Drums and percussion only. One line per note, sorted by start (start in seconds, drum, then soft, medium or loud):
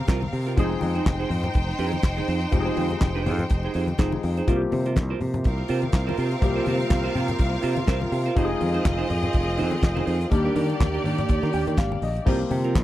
0.07 kick loud
0.07 snare loud
0.07 clap loud
0.07 closed hi-hat medium
0.07 muted conga soft
0.23 high conga loud
0.33 open hi-hat medium
0.47 closed hi-hat soft
0.57 kick loud
0.57 closed hi-hat medium
0.57 low conga medium
0.72 muted conga soft
0.81 open hi-hat medium
0.81 high conga loud
0.95 closed hi-hat soft
1.06 kick loud
1.06 snare loud
1.06 clap loud
1.06 closed hi-hat medium
1.06 high conga medium
1.21 muted conga soft
1.30 open hi-hat medium
1.30 low conga medium
1.43 closed hi-hat soft
1.43 low conga medium
1.54 kick loud
1.54 closed hi-hat medium
1.69 snare soft
1.69 muted conga soft
1.78 open hi-hat medium
1.92 closed hi-hat medium
1.92 high conga medium
2.03 kick loud
2.03 snare loud
2.03 clap loud
2.03 closed hi-hat medium
2.03 muted conga soft
2.18 high conga medium
2.28 open hi-hat medium
2.41 closed hi-hat soft
2.52 kick loud
2.52 closed hi-hat medium
2.52 muted conga soft
2.52 low conga medium
2.67 muted conga soft
2.77 open hi-hat medium
2.77 high conga loud
2.90 closed hi-hat soft
2.90 high conga medium
3.01 kick loud
3.01 snare loud
3.01 clap loud
3.01 closed hi-hat medium
3.01 high conga medium
3.16 muted conga soft
3.26 open hi-hat medium
3.26 low conga medium
3.39 closed hi-hat soft
3.39 low conga medium
3.50 kick loud
3.50 closed hi-hat medium
3.50 muted conga soft
3.63 muted conga soft
3.74 open hi-hat medium
3.87 closed hi-hat soft
3.87 high conga medium
3.98 kick loud
3.98 snare loud
3.98 clap loud
3.98 closed hi-hat medium
3.98 muted conga soft
4.12 muted conga soft
4.12 high conga medium
4.23 open hi-hat medium
4.37 closed hi-hat soft
4.48 kick loud
4.48 closed hi-hat medium
4.48 low conga medium
4.72 open hi-hat medium
4.72 high conga medium
4.86 closed hi-hat medium
4.96 kick loud
4.96 snare loud
4.96 clap loud
4.96 closed hi-hat medium
4.96 muted conga soft
4.96 high conga loud
5.21 open hi-hat medium
5.21 low conga medium
5.34 closed hi-hat soft
5.34 low conga loud
5.44 kick loud
5.44 closed hi-hat medium
5.44 muted conga soft
5.58 muted conga soft
5.68 open hi-hat medium
5.82 closed hi-hat medium
5.82 high conga medium
5.93 kick loud
5.93 snare loud
5.93 clap medium
5.93 closed hi-hat medium
6.09 muted conga soft
6.09 high conga loud
6.17 open hi-hat medium
6.31 closed hi-hat soft
6.42 kick loud
6.42 closed hi-hat medium
6.42 muted conga soft
6.42 low conga medium
6.66 open hi-hat medium
6.66 high conga loud
6.80 closed hi-hat soft
6.90 kick loud
6.90 snare loud
6.90 clap medium
6.90 closed hi-hat medium
6.90 high conga loud
7.15 open hi-hat medium
7.15 low conga medium
7.28 closed hi-hat medium
7.28 low conga medium
7.39 kick loud
7.39 closed hi-hat medium
7.39 muted conga soft
7.53 snare soft
7.62 open hi-hat medium
7.76 closed hi-hat medium
7.76 high conga medium
7.87 kick loud
7.87 snare loud
7.87 clap medium
7.87 closed hi-hat medium
7.87 muted conga soft
8.01 high conga medium
8.12 open hi-hat medium
8.26 closed hi-hat soft
8.36 kick loud
8.36 closed hi-hat medium
8.36 low conga medium
8.61 open hi-hat medium
8.61 high conga loud
8.74 closed hi-hat soft
8.85 kick loud
8.85 snare loud
8.85 clap loud
8.85 closed hi-hat medium
8.85 high conga medium
9.00 muted conga soft
9.10 open hi-hat medium
9.10 low conga medium
9.23 closed hi-hat soft
9.23 low conga medium
9.33 kick loud
9.33 closed hi-hat medium
9.33 muted conga soft
9.48 snare soft
9.57 open hi-hat medium
9.71 closed hi-hat medium
9.71 high conga loud
9.81 kick loud
9.81 snare loud
9.81 clap medium
9.81 closed hi-hat medium
9.81 muted conga soft
9.97 muted conga soft
9.97 high conga loud
10.07 open hi-hat medium
10.21 closed hi-hat soft
10.31 kick loud
10.31 closed hi-hat medium
10.31 muted conga soft
10.31 low conga medium
10.46 muted conga soft
10.56 open hi-hat medium
10.56 high conga loud
10.70 closed hi-hat soft
10.80 kick loud
10.80 snare loud
10.80 clap loud
10.80 closed hi-hat medium
10.80 muted conga soft
10.80 high conga medium
10.95 muted conga soft
11.05 open hi-hat medium
11.05 low conga medium
11.18 closed hi-hat medium
11.18 low conga medium
11.29 kick loud
11.29 closed hi-hat medium
11.29 muted conga soft
11.43 snare soft
11.43 muted conga soft
11.53 open hi-hat medium
11.67 closed hi-hat soft
11.67 high conga medium
11.77 kick loud
11.77 snare loud
11.77 clap loud
11.77 closed hi-hat medium
11.77 muted conga soft
11.92 high conga loud
12.02 open hi-hat medium
12.16 closed hi-hat soft
12.27 kick loud
12.27 crash loud
12.27 muted conga soft
12.27 low conga medium
12.42 muted conga soft
12.51 open hi-hat medium
12.51 high conga loud
12.64 closed hi-hat medium
12.75 kick loud
12.75 snare loud
12.75 clap loud
12.75 closed hi-hat medium
12.75 high conga loud